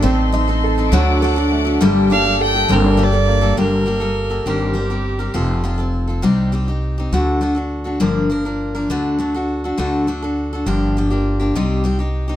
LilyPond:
<<
  \new Staff \with { instrumentName = "String section" } { \time 6/8 \key g \minor \tempo 4. = 68 << { <ees'' c'''>4. <fis'' d'''>4. | <g'' a''>2. | r2. | r2. |
r2. | r2. | r2. | } \\ { a2.~ | a2. | r2. | r2. |
r2. | r2. | r2. | } >> }
  \new Staff \with { instrumentName = "Fiddle" } { \time 6/8 \key g \minor r2. | r8 f''8 g''8 bes'8 d''4 | bes'4. g'4.~ | g'8 r2 r8 |
r2. | r2. | r2. | }
  \new Staff \with { instrumentName = "Steel-string acoustic guitar" } { \time 6/8 \key g \minor <a c' ees' a'>8 <a c' ees' a'>16 <c' ees' a'>8 <c' ees' a'>16 <d a d' fis' a'>8 <a d' fis' a'>16 <d' fis' a'>8 <d' fis' a'>16 | <g, d g bes g' a'>8 <g bes g' a'>16 <g bes g' a'>8 <g bes g' a'>16 <g, d g bes g' a'>8 <g bes g' a'>16 <g bes g' a'>8 <g bes g' a'>16 | <g, d g bes g' a'>8 <g bes g' a'>16 <g bes g' a'>8 <g bes g' a'>16 <g, ees g c' g' bes'>8 <g c' g' bes'>16 <g c' g' bes'>8 <g c' g' bes'>16 | <f c' f' a'>8 <f c' f' a'>16 <c' f' a'>8 <c' f' a'>16 <c g c' ees' g'>8 <g c' ees' g'>16 <c' ees' g'>8 <c' ees' g'>16 |
<d a d' fis' a'>8 <a d' fis' a'>16 <d' fis' a'>8 <d' fis' a'>16 <g, d f bes d' bes'>8 <f bes d' bes'>16 <f bes d' bes'>8 <f bes d' bes'>16 | <d a d' fis' a'>8 <a d' fis' a'>16 <d' fis' a'>8 <d' fis' a'>16 <d a d' fis' a'>8 <a d' fis' a'>16 <d' fis' a'>8 <d' fis' a'>16 | <g, d f bes d' g'>8 <f bes d' g'>16 <f bes d' g'>8 <f bes d' g'>16 <c g c' ees' g'>8 <g c' ees' g'>16 <c' ees' g'>8 <c' ees' g'>16 | }
  \new Staff \with { instrumentName = "Upright piano" } { \time 6/8 \key g \minor c'8 ees'8 a'8 fis8 a'8 a8 | g8 d'8 a'8 c'16 d'16 g'16 a'16 bes8 | r2. | r2. |
r2. | r2. | r2. | }
  \new Staff \with { instrumentName = "Upright bass" } { \clef bass \time 6/8 \key g \minor a,,4. d,4. | g,,4. g,,4. | g,,4. g,,4. | f,,4. c,4. |
d,4. g,,4. | d,4. d,4. | g,,4. c,4. | }
>>